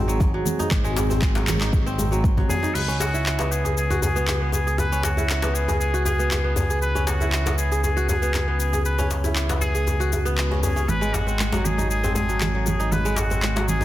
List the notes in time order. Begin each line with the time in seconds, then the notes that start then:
Already playing: G#1 G#3 C4 D#4 F#4 G#4
0.08 F#3, shaker
0.20 kick, muted conga, djembe tone, low conga, shaker
0.34 F#3
0.45 muted conga, high conga, low conga, shaker
0.59 D#4, djembe tone, shaker
0.71 G#1, kick, clap, muted conga, high conga, low conga, shaker
0.84 G#3, djembe tone, shaker
0.96 djembe slap, shaker
1.10 C4, muted conga, djembe tone, shaker
1.22 kick, clap, high conga, shaker
1.35 F#3, djembe slap, muted conga, shaker
1.47 clap, high conga, djembe tone, low conga, shaker
1.61 D#4, clap, muted conga, shaker
1.73 kick, high conga, djembe tone, shaker
1.86 C4, muted conga, shaker
1.98 djembe tone, high conga, shaker
2.12 F#3, shaker
2.24 kick, muted conga, high conga, shaker
2.37 F#3, kick, djembe tone, low conga
2.49 G#4, muted conga, djembe bass, shaker
2.63 D#4, djembe tone, shaker
2.74 C#2 G#3 C#4 E4 B4, crash, djembe tone, shaker
2.88 C#4, shaker
3.00 F#4, djembe slap, djembe tone, shaker
3.14 E4, shaker
3.26 clap, shaker
3.39 B3, djembe slap, djembe tone, shaker
3.51 G#4, shaker
3.65 G#4, djembe tone, shaker
3.77 G#4, shaker
3.90 F#4, djembe tone, shaker
4.02 G#4, djembe bass, shaker
4.16 B3, shaker
4.27 clap, djembe tone, shaker
4.42 B3
4.52 G#4, djembe tone, shaker
4.67 G#4, shaker
4.78 B4, djembe tone, shaker
4.92 C#4, shaker
5.03 F#4, djembe slap, shaker
5.17 E4, djembe tone, shaker
5.30 clap, shaker
5.42 B3, djembe slap, djembe tone, shaker
5.55 G#4, shaker
5.68 G#4, djembe tone, shaker
5.80 G#4, shaker
5.94 F#4, shaker
6.05 G#4, djembe tone, shaker
6.19 B3, shaker
6.31 clap, djembe tone, shaker
6.44 B3
6.56 G#4, djembe tone, djembe bass, shaker
6.70 G#4, shaker
6.82 B4, shaker
6.95 C#4, djembe tone, shaker
7.07 F#4, djembe slap, shaker
7.20 E4, djembe tone, shaker
7.32 clap, shaker
7.46 B3, djembe slap, djembe tone, shaker
7.58 G#4, shaker
7.72 G#4, shaker
7.84 G#4, djembe tone, shaker
7.97 F#4, shaker
8.09 G#4, djembe tone, djembe bass, shaker
8.22 B3, shaker
8.34 clap, djembe tone, shaker
8.48 B3
8.60 G#4, shaker
8.73 G#4, djembe tone, shaker
8.85 B4, shaker
8.99 C#4, djembe tone, shaker
9.11 djembe slap, shaker
9.24 E4, djembe tone, shaker
9.36 clap, shaker
9.49 B3, djembe slap, shaker
9.61 G#4, djembe tone, shaker
9.75 G#4, shaker
9.87 djembe tone, shaker
10.00 F#4, shaker
10.13 djembe tone, shaker
10.25 B3, shaker
10.38 clap, shaker
10.51 C#4, djembe tone
10.63 C#4 G#4, djembe bass, shaker
10.76 C#4, djembe tone, shaker
10.88 G#1 C4 F#4 B4 A5, muted conga, djembe tone, high conga, low conga, shaker
11.01 G#3, shaker
11.14 F#4, djembe slap, djembe tone, shaker
11.27 C4, muted conga, shaker
11.39 clap, high conga, shaker
11.52 F#3, djembe slap, muted conga, djembe tone, shaker
11.65 G#4, high conga, low conga, shaker
11.78 D#4, muted conga, djembe tone, shaker
11.90 G#4, high conga, shaker
12.03 C4, muted conga, djembe tone, shaker
12.15 G#4, high conga, djembe bass, shaker
12.29 F#3, shaker
12.41 clap, muted conga, djembe tone, low conga, shaker
12.55 F#3
12.66 G#4, muted conga, djembe tone, high conga, low conga, shaker
12.80 D#4, shaker
12.92 B4, muted conga, high conga, djembe tone, low conga, shaker
13.05 G#3, shaker
13.17 F#4, djembe slap, shaker
13.30 C4, muted conga, djembe tone, shaker
13.42 clap, high conga, shaker
13.56 F#3, muted conga, djembe slap, djembe tone, shaker
13.68 G#4, high conga, low conga, shaker
13.81 D#4, muted conga, djembe tone